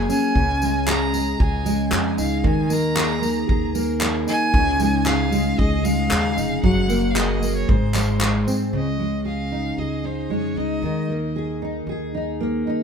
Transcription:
Already playing: F#3 A#3 G#4
0.09 C#4 G#5, tambourine
0.35 C#2 C#3, kick
0.62 G#3, tambourine
0.87 G#4 A#5, clap
1.14 G#3, tambourine
1.40 C#2 G#4 G#5, kick
1.65 G#3, tambourine
1.91 F2 G#4, clap
2.17 C#2 D#4 F5, tambourine
2.44 D#2 D#3 G#5, kick
2.70 A#3 A#5, tambourine
2.96 G#4, clap
3.22 A#3, tambourine
3.48 D#2 G#4, kick
3.75 A#3, tambourine
4.01 G#4, clap
4.27 D#4 G#5, tambourine
4.54 C#2 C#3, kick
4.80 G#3, tambourine
5.06 G#4 F5, clap
5.32 G#3, tambourine
5.58 C#2 G#4 D#5, kick
5.84 G#3 F5, tambourine
6.10 D#2 G#4, clap
6.37 F1 D#4, tambourine
6.63 F#1 F#3 F#5, kick
6.89 A#3, tambourine
7.11 F5
7.15 G#4 D#5, clap
7.42 A#3, tambourine
7.56 C#5
7.68 G#1 G#2 C5, kick
7.94 G#3, clap, tambourine
8.21 G#4, clap
8.47 C4, tambourine
8.73 C#2 C#3 D#5
9.00 G#3
9.25 G#4 F5
9.52 D#4
9.77 C#2 G#4 D#5
10.04 D#4 C5
10.29 F2 G#3 C#5
10.56 C#2 D#4 D#5
10.82 D#2 D#3
11.10 A#3
11.36 G#4
11.62 D#4
11.87 D#2 G#4
12.15 D#4
12.40 A#3
12.67 D#4

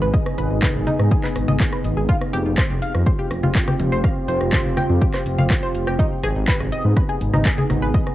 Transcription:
Already playing: B3 D#4 G#4
0.02 G#1 B4
0.14 D#5, kick
0.26 cross-stick
0.38 G#1 B4, open hi-hat
0.51 G#1
0.62 B4, kick, cross-stick, clap, low conga
0.75 G#1
0.87 D#4, open hi-hat, low conga
0.99 G#2, cross-stick
1.11 G#4, kick
1.24 B4, clap
1.36 G#1, cross-stick, open hi-hat
1.48 G#1 D#5, low conga
1.60 kick, clap
1.73 B4, cross-stick
1.84 G#1, open hi-hat
1.97 G#1 G#4
2.09 C4 F4 G4, kick
2.21 cross-stick
2.33 F1 G4, open hi-hat
2.46 F1
2.58 C5, kick, cross-stick, clap
2.70 F1
2.82 F5, open hi-hat
2.94 F2, cross-stick
3.06 C5, kick
3.19 G4
3.31 F1, cross-stick, open hi-hat
3.43 F1 F4, low conga
3.55 kick, clap
3.68 G4, cross-stick, low conga
3.80 F1, open hi-hat, low conga
3.92 F1 C5
4.04 F5, kick, cross-stick
4.28 F1 C5, open hi-hat
4.41 F1, cross-stick
4.53 C5, kick, clap, low conga
4.65 F1
4.77 G5, cross-stick, open hi-hat, low conga
4.90 F2
5.01 G4, kick
5.14 C5, cross-stick, clap
5.26 F1, open hi-hat
5.38 F1 F5, low conga
5.50 kick, cross-stick, clap
5.63 C5
5.75 F1, open hi-hat
5.87 F1 G4, cross-stick
5.99 B3 D#4 G#4, kick
6.23 G#1 G#4, cross-stick, open hi-hat
6.36 G#1
6.48 B4, kick, clap
6.60 G#1, cross-stick
6.72 D#5, open hi-hat
6.85 G#2
6.97 B4, kick, cross-stick
7.09 G#4
7.21 G#1, open hi-hat
7.33 G#1 D#4, cross-stick, low conga
7.45 kick, clap
7.58 G#4, low conga
7.70 G#1, cross-stick, open hi-hat, low conga
7.82 G#1 B4
7.94 F4 D#5, kick
8.07 cross-stick

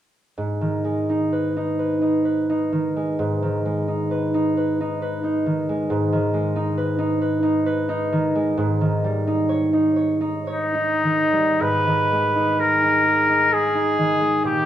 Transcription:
0.38 G#2
0.61 D#3
0.84 G#3
1.10 D#4
1.33 B4
1.57 D#4
1.79 B4
2.01 D#4
2.25 B4
2.50 D#4
2.72 D#3
2.96 G#3
3.19 G#2
3.42 D#3
3.65 G#3
3.88 D#4
4.11 B4
4.34 D#4
4.57 B4
4.81 D#4
5.02 B4
5.23 D#4
5.46 D#3
5.69 G#3
5.90 G#2
6.12 D#3
6.33 G#3
6.56 D#4
6.78 B4
6.99 D#4
7.21 B4
7.43 D#4
7.66 B4
7.89 D#4
8.12 D#3
8.35 G#3
8.57 G#2
8.81 D#3
9.04 G3
9.27 D#4
9.49 C#5
9.73 D#4
9.96 C#5
10.21 D#4
10.47 D#4 C#5
10.75 D#4
11.04 D#3
11.33 G3
11.60 G#2 B4
11.86 D#3
12.12 G#3
12.35 D#4
12.59 G#4 A#4
12.84 D#4
13.06 G#4
13.29 D#4
13.52 G#4
13.75 D#4
13.98 D#3
14.21 G#3
14.44 A#2 G4

